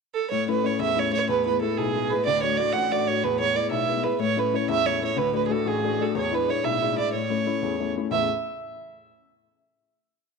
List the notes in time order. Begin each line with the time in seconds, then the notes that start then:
0.14 A4
0.30 A2 C#5
0.48 A3 C#4 E4 B4
0.64 A3 C#4 E4 C#5
0.79 E2 E5
0.95 A3 C#4 E4
0.99 C#5
1.12 A3 C#4 E4 C#5
1.29 E2 B4
1.45 G#3 B3 E4 B4
1.61 G#3 B3 E4 A4
1.77 B1 G#4
1.95 G#3 B3 E4
2.10 G#3 B3 E4 B4
2.25 D2 D5
2.43 A3 D4 F#4 C#5
2.57 A3 D4 F#4 D5
2.72 A1 F#5
2.92 A3 D4 F#4 D5
3.07 A3 D4 F#4 C#5
3.23 E2 B4
3.40 G#3 B3 E4 C#5
3.55 G#3 B3 E4 D5
3.71 B1 E5
3.88 G#3 B3 E4
4.03 G#3 B3 E4 B4
4.19 A2 C#5
4.36 A3 C#4 E4 B4
4.53 A3 C#4 E4 C#5
4.68 E2 E5
4.85 A3 E4 C#5
5.00 A3 C#4 E4 C#5
5.16 D2 B4
5.33 A3 D4 F#4 B4
5.47 A3 D4 F#4 G#4
5.52 A4
5.65 A1 G#4
5.83 A3 D4 F#4
6.00 A3 D4 F#4 A4
6.15 E2 C#5
6.31 G#3 D4 E4 B4
6.48 G#3 D4 E4 C#5
6.64 B1 E5
6.82 G#3 D4 E4
6.97 G#3 D4 E4 D5
7.13 A2 C#5
7.30 A3 C#4 E4
7.47 A3 C#4 E4
7.62 E2
7.80 A3 C#4 E4
7.96 A3 C#4 E4
8.10 A1 E2 C#3 A3 E4 A4 E5